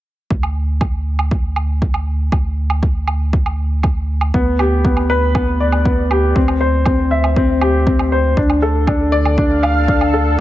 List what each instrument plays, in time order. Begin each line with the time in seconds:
0.31 analog synth bass D2, kick
0.43 low woodblock
0.81 kick, low woodblock
1.19 low woodblock
1.31 kick
1.56 low woodblock
1.82 kick
1.94 low woodblock
2.32 analog synth bass D2, kick, low woodblock
2.70 low woodblock
2.83 kick
3.08 low woodblock
3.33 kick
3.46 low woodblock
3.83 kick, low woodblock
4.21 low woodblock
4.34 analog synth bass D2, grand piano B3, kick
4.59 grand piano G4, low woodblock
4.85 grand piano B3, kick
4.97 low woodblock
5.10 grand piano B4
5.35 grand piano B3, kick, low woodblock
5.60 grand piano D5
5.72 low woodblock
5.85 grand piano B3, kick
6.11 grand piano G4, low woodblock
6.35 analog synth bass D2, grand piano C4, kick
6.48 low woodblock
6.61 grand piano C5
6.86 grand piano C4, kick, low woodblock
7.11 grand piano E5
7.24 low woodblock
7.36 grand piano C4, kick
7.61 grand piano G4, low woodblock
7.87 grand piano C4, kick
7.99 low woodblock
8.12 grand piano C5
8.37 analog synth bass D2, analog synth pad D3, grand piano D4, kick
8.50 low woodblock
8.59 analog synth pad D4, grand piano A4
8.87 grand piano D4, kick, low woodblock
9.12 grand piano D5
9.25 analog synth pad A4 F5, low woodblock
9.38 grand piano D4, kick
9.63 grand piano F5, low woodblock
9.88 grand piano D4, kick
10.01 low woodblock
10.14 grand piano A4